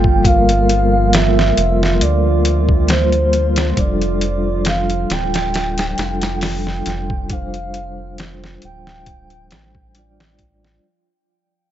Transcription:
0.00 1.53 G1 loud
0.00 10.85 F3 medium
0.00 0.17 G3 medium
0.00 0.19 A#3 medium
0.00 0.21 F4 medium
0.00 10.85 F4 medium
0.00 0.22 A4 medium
0.00 0.27 G5 loud
0.04 kick medium
0.23 0.61 G3 medium
0.23 0.62 A#3 medium
0.23 0.63 F4 medium
0.23 1.13 F5 loud
0.23 kick loud
0.23 closed hi-hat medium
0.28 0.64 A#4 loud
0.49 closed hi-hat soft
0.69 closed hi-hat medium
1.13 2.04 E5 loud
1.13 snare loud
1.13 closed hi-hat medium
1.39 snare medium
1.57 2.03 F1 medium
1.57 closed hi-hat medium
1.83 snare medium
2.01 3.74 D2 medium
2.01 2.90 D5 medium
2.01 closed hi-hat medium
2.45 closed hi-hat medium
2.69 kick medium
2.87 3.72 G3 medium
2.87 3.73 A#3 medium
2.87 3.73 F4 medium
2.87 3.74 C5 medium
2.87 snare loud
2.87 closed hi-hat medium
2.92 3.74 C5 loud
3.12 closed hi-hat soft
3.33 closed hi-hat medium
3.56 snare loud
3.56 closed hi-hat medium
3.74 5.06 F1 medium
3.74 5.91 G3 medium
3.74 5.93 D4 medium
3.74 kick loud
3.74 closed hi-hat medium
3.79 5.95 F4 medium
3.79 4.69 D5 loud
3.84 5.96 A4 loud
4.01 closed hi-hat soft
4.21 closed hi-hat medium
4.65 5.11 F5 loud
4.65 snare loud
4.65 closed hi-hat medium
4.90 closed hi-hat soft
5.10 5.94 D1 medium
5.10 6.39 G5 loud
5.10 snare loud
5.10 closed hi-hat medium
5.34 snare loud
5.34 closed hi-hat medium
5.54 snare loud
5.54 closed hi-hat medium
5.78 snare loud
5.78 closed hi-hat medium
5.95 6.82 F1 medium
5.95 7.24 G3 medium
5.95 7.26 D4 medium
5.95 snare loud
5.95 closed hi-hat medium
6.02 7.27 F4 medium
6.02 7.29 A4 medium
6.22 snare loud
6.22 closed hi-hat medium
6.41 7.27 G5 loud
6.41 snare loud
6.41 open hi-hat medium
6.67 snare soft
6.86 8.59 F1 medium
6.86 snare soft
6.86 closed hi-hat medium
7.10 kick medium
7.27 7.67 G3 medium
7.27 7.68 D4 medium
7.27 7.34 G5 medium
7.27 kick loud
7.27 closed hi-hat medium
7.32 7.69 F4 medium
7.32 7.69 C5 medium
7.32 8.19 F5 loud
7.54 closed hi-hat soft
7.74 closed hi-hat medium
8.18 snare loud
8.18 closed hi-hat medium
8.44 snare medium
8.62 9.53 D1 medium
8.62 10.36 G5 loud
8.62 closed hi-hat medium
8.87 snare medium
9.06 kick loud
9.06 closed hi-hat medium
9.30 closed hi-hat soft
9.51 10.80 A1 medium
9.51 snare loud
9.51 closed hi-hat medium
9.75 kick medium
9.94 10.78 G3 medium
9.94 10.79 D4 medium
9.94 10.79 F4 medium
9.94 closed hi-hat medium
9.98 10.80 D5 loud
10.20 snare loud
10.39 kick medium
10.39 closed hi-hat medium
10.64 snare medium

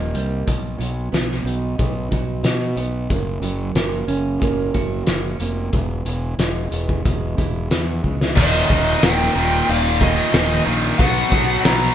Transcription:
0.00 0.11 D#1 medium
0.00 0.13 G3 medium
0.00 0.47 A#3 medium
0.00 0.47 D#4 medium
0.14 0.44 C2 medium
0.14 0.47 G3 medium
0.14 closed hi-hat medium
0.47 0.77 B1 medium
0.47 2.11 B2 medium
0.47 kick medium
0.47 closed hi-hat medium
0.78 1.09 B1 medium
0.78 2.44 F#3 medium
0.78 closed hi-hat medium
1.12 1.42 B1 medium
1.12 1.77 B3 medium
1.12 snare medium
1.12 closed hi-hat medium
1.31 snare soft
1.44 1.75 B1 medium
1.44 2.42 D#4 medium
1.44 closed hi-hat medium
1.78 2.09 B1 medium
1.78 2.75 B3 medium
1.78 kick medium
1.78 closed hi-hat medium
2.11 2.42 B1 medium
2.11 3.10 F#4 medium
2.11 kick medium
2.11 closed hi-hat medium
2.43 2.74 B2 medium
2.43 3.09 D#4 medium
2.43 snare medium
2.43 closed hi-hat medium
2.76 3.07 B1 medium
2.76 3.10 B3 medium
2.76 closed hi-hat medium
3.10 3.40 F#1 medium
3.10 4.75 F#2 medium
3.10 kick medium
3.10 closed hi-hat medium
3.41 3.72 F#1 medium
3.41 5.07 F#3 medium
3.41 closed hi-hat medium
3.75 4.05 F#1 medium
3.75 4.39 A#3 medium
3.75 snare medium
3.75 closed hi-hat medium
4.08 4.38 F#1 medium
4.08 5.05 C#4 medium
4.08 closed hi-hat medium
4.41 4.72 F#1 medium
4.41 5.39 A#3 medium
4.41 kick medium
4.41 closed hi-hat medium
4.74 5.05 F#1 medium
4.74 5.73 F#4 medium
4.74 kick medium
4.74 closed hi-hat medium
5.06 5.37 F#1 medium
5.06 5.73 C#4 medium
5.06 snare medium
5.06 closed hi-hat medium
5.40 5.70 F1 medium
5.40 5.73 A#3 medium
5.40 closed hi-hat medium
5.73 6.03 E1 medium
5.73 7.38 E2 medium
5.73 kick medium
5.73 closed hi-hat medium
6.05 6.36 E1 medium
6.05 7.71 E3 medium
6.05 closed hi-hat medium
6.38 6.69 E1 medium
6.38 7.03 G#3 medium
6.38 snare medium
6.38 closed hi-hat medium
6.71 7.01 E1 medium
6.71 7.69 B3 medium
6.71 closed hi-hat medium
6.89 kick medium
7.05 7.35 E1 medium
7.05 8.03 G#3 medium
7.05 kick medium
7.05 closed hi-hat medium
7.37 7.68 E1 medium
7.37 8.36 E4 medium
7.37 kick medium
7.37 closed hi-hat medium
7.70 8.00 E2 medium
7.70 8.36 B3 medium
7.70 snare loud
7.70 closed hi-hat medium
8.04 8.33 C#2 medium
8.04 8.36 G#3 medium
8.04 kick soft
8.21 snare medium
8.36 8.62 D#1 medium
8.36 8.68 D#2 medium
8.36 8.68 A#2 loud
8.36 8.69 D#3 loud
8.36 9.05 D#5 medium
8.36 kick loud
8.36 crash loud
8.54 snare soft
8.69 8.94 D#1 medium
8.69 9.01 D#2 medium
8.69 9.02 A#2 medium
8.69 9.02 D#3 loud
8.69 kick medium
9.02 9.27 D#1 medium
9.02 9.34 D#2 medium
9.02 9.35 A#2 medium
9.02 9.36 D#3 medium
9.02 9.70 G5 loud
9.02 snare loud
9.02 open hi-hat medium
9.35 9.60 D#1 medium
9.35 9.68 D#2 medium
9.35 9.68 A#2 medium
9.35 9.69 D#3 medium
9.69 10.18 D#1 medium
9.69 10.00 D#2 medium
9.69 10.01 A#2 loud
9.69 10.01 D#3 loud
9.69 10.03 F5 medium
9.69 open hi-hat medium
10.01 10.32 D#2 medium
10.01 10.33 A#2 medium
10.01 10.34 D#3 medium
10.01 10.62 D#5 medium
10.01 kick medium
10.34 10.59 D#1 medium
10.34 10.65 D#2 medium
10.34 10.66 A#2 medium
10.34 10.66 D#3 medium
10.34 snare loud
10.34 open hi-hat medium
10.66 10.91 A#1 medium
10.66 10.97 D#2 medium
10.66 10.97 A#2 medium
10.66 10.97 D#3 medium
10.98 11.23 B1 medium
10.98 11.31 B2 medium
10.98 11.31 F#3 loud
10.98 11.33 B3 loud
10.98 11.60 F#5 loud
10.98 kick loud
10.98 open hi-hat medium
11.32 11.57 B1 medium
11.32 11.63 B2 medium
11.32 11.64 F#3 medium
11.32 11.65 B3 medium
11.32 kick medium
11.64 11.89 B1 medium
11.64 11.95 B2 medium
11.64 11.95 F#3 medium
11.64 11.95 B3 loud
11.64 11.95 A#5 loud
11.64 snare loud
11.64 open hi-hat medium

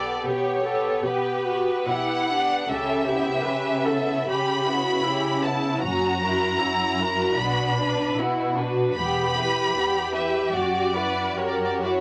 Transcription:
0.00 0.13 B1 soft
0.00 0.13 B2 soft
0.00 0.24 B3 soft
0.00 0.24 G4 soft
0.00 0.25 A4 soft
0.00 0.26 D5 soft
0.24 0.91 B2 soft
0.24 0.63 B3 soft
0.24 0.63 G4 soft
0.24 1.02 C#5 soft
0.63 1.03 B3 soft
0.63 1.03 G4 soft
0.63 1.02 A4 soft
1.02 1.75 B2 soft
1.02 1.44 B3 soft
1.02 1.45 G4 soft
1.02 1.44 G4 soft
1.02 1.89 B4 soft
1.44 1.87 B3 soft
1.44 1.88 F#4 soft
1.44 1.87 G4 soft
1.87 2.55 B2 soft
1.87 2.28 B3 soft
1.87 2.29 E4 soft
1.87 2.28 G4 soft
1.87 2.68 F#5 medium
2.29 2.67 B3 soft
2.29 2.67 D4 soft
2.29 2.67 G4 soft
2.67 3.31 C#2 soft
2.67 3.34 C#3 soft
2.67 3.03 C#4 soft
2.67 3.03 G4 soft
2.67 3.04 A4 soft
2.67 4.27 E5 medium
3.05 3.45 B3 soft
3.05 3.43 G4 soft
3.09 3.45 E4 soft
3.42 4.18 C#3 soft
3.42 3.85 C#4 soft
3.42 3.85 G4 soft
3.42 3.84 B4 soft
3.83 4.28 B3 soft
3.83 4.28 E4 soft
3.83 4.27 A4 soft
4.27 4.95 C#3 soft
4.27 4.64 C#4 soft
4.27 4.66 G4 soft
4.27 4.65 G4 soft
4.27 5.41 B5 medium
4.66 5.04 B3 soft
4.66 5.04 E4 soft
4.66 5.04 F#4 soft
5.04 5.73 C#3 soft
5.04 5.43 C#4 soft
5.04 5.42 E4 soft
5.04 5.43 G4 soft
5.42 5.82 B3 soft
5.42 5.81 E4 soft
5.42 5.82 E4 soft
5.42 5.82 A5 medium
5.81 6.49 F#1 soft
5.81 6.52 F#2 medium
5.81 6.20 C#4 soft
5.81 6.60 F#4 soft
5.81 6.20 F#4 soft
5.81 7.34 A#5 medium
6.24 6.62 E4 soft
6.24 6.62 A#4 soft
6.60 7.28 F#2 soft
6.60 6.99 C#4 soft
6.60 6.99 E4 soft
6.60 6.99 F#4 soft
6.98 7.38 E4 soft
6.98 7.37 F#4 soft
6.98 7.38 A#4 soft
7.36 8.04 B1 soft
7.36 8.07 B2 soft
7.36 7.75 B3 soft
7.36 8.16 D4 soft
7.36 7.75 F#4 soft
7.36 8.16 B5 medium
7.80 8.18 D4 soft
7.80 8.18 B4 soft
8.16 8.86 B2 soft
8.16 8.57 B3 soft
8.16 8.56 E4 soft
8.16 8.57 F#4 soft
8.56 8.96 D4 soft
8.56 8.96 F#4 soft
8.56 8.97 B4 soft
8.95 9.62 E1 soft
8.95 9.65 E2 soft
8.95 9.34 B3 soft
8.95 9.74 G4 soft
8.95 9.34 G4 soft
8.95 10.09 B5 medium
9.35 9.74 E4 soft
9.35 9.75 B4 soft
9.74 10.44 E2 soft
9.74 10.14 B3 soft
9.74 10.52 G4 soft
9.74 10.14 G4 soft
10.14 10.54 E4 soft
10.14 10.54 B4 soft
10.14 10.54 E5 medium
10.52 11.24 F#1 soft
10.52 11.26 F#2 soft
10.52 10.91 F#4 soft
10.52 10.95 F#4 soft
10.52 10.91 G4 soft
10.52 11.36 D5 medium
10.94 11.36 E4 soft
10.94 11.35 F#4 soft
10.94 11.36 B4 soft
11.35 12.01 F#2 soft
11.35 11.78 F#4 soft
11.35 11.80 G4 soft
11.35 11.81 A#4 soft
11.35 11.45 C#5 soft
11.46 11.55 D5 soft
11.56 11.64 C#5 soft
11.64 11.72 D5 soft
11.73 11.81 C#5 soft
11.80 12.01 E4 soft
11.80 12.01 F#4 soft
11.80 11.91 D5 soft
11.91 12.01 C#5 soft

